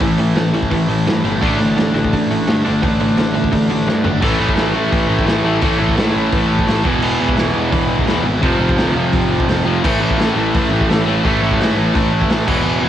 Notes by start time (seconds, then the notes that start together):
0.00 A1 A2 E3 A3, kick, open hi-hat
0.18 A2 E3, open hi-hat
0.35 A1 A2 E3, snare, open hi-hat
0.53 A1 A2 E3, open hi-hat
0.63 kick
0.70 A1 A2 E3, kick, open hi-hat
0.88 A1 A2 E3, open hi-hat
1.06 G2 A2 E3, snare, open hi-hat
1.24 G1 A2 E3 A3, open hi-hat
1.40 A1 D3 A3 D4, kick, crash
1.59 D3 A3, open hi-hat
1.76 A1 D3 A3, snare, open hi-hat
1.95 A1 D3 A3, open hi-hat
2.04 kick
2.13 A1 D3 A3, kick, open hi-hat
2.30 A1 D3 A3, open hi-hat
2.48 G2 D3 A3, snare, open hi-hat
2.64 G1 D3 A3 D4, open hi-hat
2.82 A1 D3 A3 D4, kick, open hi-hat
3.00 D3 A3, open hi-hat
3.17 A1 D3 A3, snare, open hi-hat
3.34 A1 D3 A3, open hi-hat
3.44 kick
3.52 A1 D3 A3, kick, open hi-hat
3.69 A1 D3 A3, open hi-hat
3.87 G2 D3 A3, snare
4.04 G1 D3 A3 D4, floor tom
4.21 A1 A2 E3 A3, kick, crash
4.39 A1 A2 E3 A3
4.49 kick
4.56 A1 A2 E3 A3, snare, open hi-hat
4.73 A1 A2 E3 A3
4.91 A1 A2 E3 A3, kick, open hi-hat
5.07 A1 A2 E3 A3
5.19 kick
5.25 A1 A2 E3 A3, snare, open hi-hat
5.44 A1 A2 E3 A3
5.61 A1 A2 E3 A3, kick, open hi-hat
5.79 A1 A2 E3 A3
5.89 kick
5.96 G#2 A2 E3 A3, snare, open hi-hat
6.12 A1 A2 E3 A3
6.30 A1 A2 E3 A3, kick, open hi-hat
6.48 A2 E3 A3
6.59 kick
6.67 A1 A2 E3 A3, snare, open hi-hat
6.84 E1 E2 B2 E3, kick
7.02 E1 E2 B2 E3, crash
7.20 E1 E2 B2 E3
7.29 kick
7.37 E1 E2 B2 E3, snare, open hi-hat
7.53 E1 E2 B2 E3
7.71 E1 E2 B2 E3, kick, open hi-hat
7.88 E1 E2 B2 E3
7.99 kick
8.06 E1 E2 B2 E3, snare, open hi-hat
8.23 G#1 E2 B2 E3
8.41 F1 F2 C3 F3, kick, open hi-hat
8.59 F1 F2 C3 F3
8.69 kick
8.76 D2 F2 C3 F3, snare, open hi-hat
8.95 F1 F2 C3 F3
9.12 F1 F2 C3 F3, kick, open hi-hat
9.29 F2 C3 F3
9.40 kick
9.48 F1 F2 C3 F3, snare, open hi-hat
9.64 F1 F2 C3 F3
9.82 A1 A2 E3 A3, kick, crash
9.87 A3
10.00 A1 A2 E3 A3
10.11 kick
10.18 A1 A2 E3 A3, snare, open hi-hat
10.36 A1 A2 E3 A3
10.54 A1 A2 E3 A3, kick, open hi-hat
10.71 A1 A2 E3 A3
10.81 kick
10.89 A1 A2 E3 A3, snare, open hi-hat
11.07 A1 A2 E3 A3
11.24 A1 A2 E3 A3, kick, open hi-hat
11.42 A1 A2 E3 A3
11.51 kick
11.59 G#2 A2 E3 A3, snare, open hi-hat
11.77 A1 A2 E3 A3
11.94 A1 A2 E3 A3, kick, open hi-hat
12.12 A2 E3 A3
12.22 kick
12.29 A1 A2 E3 A3, snare, open hi-hat
12.47 E1 E2 B2 E3, kick, crash
12.64 E1 E2 B2 E3
12.81 E1 E2 B2 E3